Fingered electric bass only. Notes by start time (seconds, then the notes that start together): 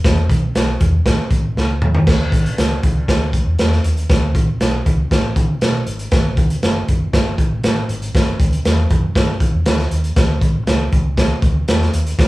0.04 E1
0.29 B1
0.55 B1
0.81 E2
1.05 A1
1.30 A1
1.56 C#2
1.81 D#2
2.07 D2
2.32 A1
2.57 C#2
2.83 C#2
3.08 D2
3.46 E2
3.84 D#2
4.10 D2
4.35 A1
4.61 B1
4.86 C#2
5.11 A1
5.36 D3
5.61 B2
5.87 G#1
6.12 G1
6.37 D2
6.62 F#1
6.88 F#1
7.13 G1
7.51 A1
7.64 A1
7.89 G#1
8.15 G1
8.40 D2
8.65 E2
8.91 F#2
9.16 G2
9.54 E2
9.66 D2
9.91 D#2
10.16 D2
10.41 A1
10.67 C#2
10.93 C#2
11.42 D2
11.68 E2
11.93 D#2
12.19 D2